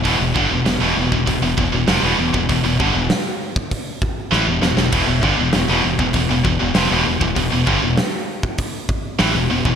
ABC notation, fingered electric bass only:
X:1
M:4/4
L:1/16
Q:1/4=98
K:Ephr
V:1 name="Fingered electric bass" clef=bass
E,,, E,,, G,,, E,,, E,,, E,,, E,,, E,,, E,,, E,,, E,,, E,,, F,,, E,,, E,,, E,,, | E,,, E,,, G,,, E,,, z8 A,,, E,,, E,,, E,,, | E,,, E,,, G,,, E,,, E,,, E,,, E,,, E,,, E,,, E,,, E,,, E,,, F,,, E,,, E,,, E,,, | E,,, E,,, G,,, E,,, z8 A,,, E,,, E,,, E,,, |]